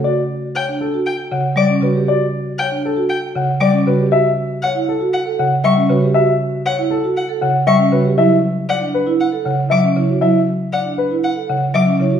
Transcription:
X:1
M:4/4
L:1/16
Q:1/4=118
K:Glyd
V:1 name="Violin"
z4 g z3 g z3 d' z3 | z4 g z3 g z3 d' z3 | z4 f z3 f z3 c' z3 | z4 f z3 f z3 c' z3 |
z4 f z3 f z3 d' z3 | z4 f z3 f z3 d' z3 |]
V:2 name="Grand piano"
d z3 c z A z3 f z d z B z | d z3 c z A z3 f z d z B z | e z3 c z A z3 f z e z B z | e z3 c z A z3 f z e z B z |
e z3 d z B z3 f z e z c z | e z3 d z B z3 f z e z c z |]
V:3 name="Vibraphone"
F z4 D z F z4 z C F G | F z4 D z F z4 z C F G | F z4 E z F z A z3 C F G | F z4 E z F z A z3 C F G |
E z4 D z E z A z3 C E F | E z4 D z E z A z3 C E F |]
V:4 name="Marimba" clef=bass
z8 z2 C, z G, z C, z | z8 z2 C, z G, z C, z | z8 z2 C, z G, z C, z | z8 z2 C, z G, z C, z |
F, z8 z C, z F, z C, z | F, z8 z C, z F, z C, z |]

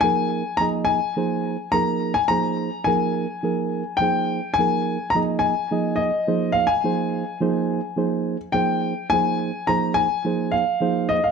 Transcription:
X:1
M:4/4
L:1/16
Q:"Swing 16ths" 1/4=106
K:Fm
V:1 name="Grand piano"
a4 b2 a6 b3 a | b4 a8 g4 | a4 b2 a4 e4 f a- | a8- a3 z g4 |
a4 b2 a4 f4 e f |]
V:2 name="Reed electric piano"
[F,B,EAB]2 z2 [F,B,EAe]2 z2 [F,B,EAc]2 z2 [F,B,EAB]2 z2 | [F,B,EAc]2 z2 [F,B,EAB]2 z2 [F,B,EAB]2 z2 [F,B,EAc]2 z2 | [F,B,EAB]2 z2 [F,B,EAe]2 z2 [F,B,EAe]2 z2 [F,B,EAc]2 z2 | [F,B,EAc]2 z2 [F,B,EAc]2 z2 [F,B,EAc]2 z2 [F,B,EAc]2 z2 |
[F,B,EAc]2 z2 [F,B,EAc]2 z2 [F,B,EAc]2 z2 [F,B,EAc]2 z2 |]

